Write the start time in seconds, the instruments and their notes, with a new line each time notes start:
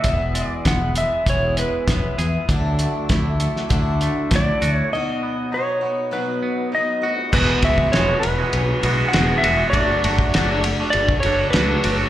Already playing: clean electric guitar E3, electric slide guitar E5
0.03 fingered electric bass E1, clean electric guitar E2, twelve-string acoustic guitar E2 B2 E3 B3, tonewheel organ E4 G#4 B4 E5, kick, closed hi-hat
0.07 twelve-string acoustic guitar E4 G#4
0.34 clean electric guitar G#3, closed hi-hat
0.48 electric slide guitar D5
0.65 fingered electric bass E1, twelve-string acoustic guitar E3 B3 E4, clean electric guitar B3, electric slide guitar F#5, kick, snare, closed hi-hat
0.69 twelve-string acoustic guitar G#4
0.95 clean electric guitar G#3, twelve-string acoustic guitar B3 E4 G#4, electric slide guitar E5, closed hi-hat
1.00 twelve-string acoustic guitar E3
1.26 fingered electric bass E1, twelve-string acoustic guitar E2 B2 E3 B3 E4, clean electric guitar E3, electric slide guitar C#5, kick, closed hi-hat
1.31 twelve-string acoustic guitar G#4
1.57 clean electric guitar G#3, electric slide guitar B4, closed hi-hat
1.87 fingered electric bass E1, twelve-string acoustic guitar E3 B3 E4, clean electric guitar B3, kick, snare, closed hi-hat
1.91 twelve-string acoustic guitar G#4
2.18 fingered electric bass E2, twelve-string acoustic guitar E3 B3 E4 G#4, clean electric guitar G#4, closed hi-hat
2.48 fingered electric bass D2, clean electric guitar D3, twelve-string acoustic guitar D3 F#3 A3 D4 E4, tonewheel organ F#4 A4, kick, closed hi-hat
2.52 tonewheel organ E4 D5
2.79 clean electric guitar A3, closed hi-hat
3.09 fingered electric bass D2, twelve-string acoustic guitar F#3 A3 D4 E4, clean electric guitar E4, kick, snare, closed hi-hat
3.40 clean electric guitar A3, closed hi-hat
3.56 snare
3.69 fingered electric bass D2, twelve-string acoustic guitar D3 F#3 A3 D4 E4, clean electric guitar D3, kick, closed hi-hat
4.01 clean electric guitar A3, closed hi-hat
4.31 fingered electric bass D2, twelve-string acoustic guitar F#3 A3 D4 E4, clean electric guitar E4, kick, snare, closed hi-hat
4.36 electric slide guitar D5
4.61 fingered electric bass D2, twelve-string acoustic guitar A3 D4 E4, clean electric guitar F#4, closed hi-hat
4.75 electric slide guitar C#5
4.92 clean electric guitar B2, twelve-string acoustic guitar B2 F#3 B3 D#4 F#4, tonewheel organ D#4 F#4 B4, electric slide guitar D#5
5.23 clean electric guitar B3
5.52 twelve-string acoustic guitar F#3 B3 D#4 F#4, clean electric guitar D#4, electric slide guitar C#5
5.81 clean electric guitar B3, twelve-string acoustic guitar D#4 F#4
5.85 twelve-string acoustic guitar B3
6.11 twelve-string acoustic guitar B2 F#3 B3 D#4 F#4, clean electric guitar F#3, electric slide guitar B4
6.43 clean electric guitar B3
6.72 twelve-string acoustic guitar F#3 B3 D#4, clean electric guitar D#4, electric slide guitar D#5
6.76 twelve-string acoustic guitar F#4
7.01 tonewheel organ A3 B3, twelve-string acoustic guitar D#4 F#4, clean electric guitar F#4
7.05 twelve-string acoustic guitar B3, tonewheel organ C4 D4
7.12 tonewheel organ E4 F4
7.17 tonewheel organ G4 A4
7.23 tonewheel organ B4 C5
7.29 twelve-string acoustic guitar E2, tonewheel organ E4 F#4 G#4 B4 D5
7.33 fingered electric bass E1, clean electric guitar E2 B2 E3 G#3 B3 F#4, twelve-string acoustic guitar B2 F#3 G#3 B3 F#4, electric slide guitar B4, kick, crash
7.62 fingered electric bass C#2, clean electric guitar E3 G#3 B3 F#4, twelve-string acoustic guitar F#3 G#3 F#4, electric slide guitar E5, kick, ride
7.78 kick
7.92 fingered electric bass E1, clean electric guitar E2 B2 E3 G#3 B3 F#4, twelve-string acoustic guitar F#3 G#3 B3, electric slide guitar C#5, snare, ride
7.97 twelve-string acoustic guitar F#4
8.09 clean electric guitar E3 G#3 B3 F#4
8.20 twelve-string acoustic guitar F#4, electric slide guitar B4, ride
8.24 fingered electric bass E1, twelve-string acoustic guitar F#3 G#3 B3, muted clean electric guitar stroke
8.38 clean electric guitar E3 G#3 B3 F#4
8.53 fingered electric bass B1, ride
8.82 fingered electric bass B1, clean electric guitar E3 G#3 B3 F#4, twelve-string acoustic guitar F#3 G#3 B3 F#4, ride
8.97 clean electric guitar E3 G#3 B3 F#4
9.08 clean electric guitar E2, twelve-string acoustic guitar F#3 G#3 B3, electric slide guitar F#5
9.13 fingered electric bass E1, clean electric guitar B2 E3 G#3 B3 F#4, twelve-string acoustic guitar F#4, snare, ride
9.27 clean electric guitar E3 G#3 B3 F#4
9.38 electric slide guitar E5
9.42 fingered electric bass E1, clean electric guitar E3 G#3 B3 F#4, ride
9.57 clean electric guitar E3 G#3 B3 F#4
9.70 fingered electric bass F#1, twelve-string acoustic guitar F#3 A3 D4 F#4, clean electric guitar F#3 A3, tonewheel organ A3 D4 F#4 A4, electric slide guitar D5, kick, ride
9.74 clean electric guitar D4 F#4
10.03 fingered electric bass F#1, clean electric guitar F#3 A3 D4 F#4, twelve-string acoustic guitar A3 D4 F#4, ride
10.19 kick
10.33 fingered electric bass F#1, twelve-string acoustic guitar F#3 A3 D4 F#4, clean electric guitar F#3 A3 D4 F#4, snare, ride
10.50 clean electric guitar A3 D4 F#4
10.63 twelve-string acoustic guitar A3 D4 F#4, muted clean electric guitar stroke, ride
10.80 clean electric guitar A3 D4 F#4
10.90 electric slide guitar D5, ride
10.94 fingered electric bass F#1
11.09 kick
11.20 twelve-string acoustic guitar D4 F#4, electric slide guitar C#5, ride
11.25 fingered electric bass F#1, clean electric guitar F#3 A3 D4 F#4, twelve-string acoustic guitar A3
11.39 clean electric guitar A3 D4 F#4
11.50 twelve-string acoustic guitar F#3 A3, clean electric guitar F#3 A3, electric slide guitar B4, snare, ride
11.55 fingered electric bass C#2, clean electric guitar D4 F#4, twelve-string acoustic guitar D4 F#4
11.67 clean electric guitar A3 D4 F#4
11.83 fingered electric bass F#1, clean electric guitar F#3 A3 D4 F#4, ride
11.99 clean electric guitar A3 D4 F#4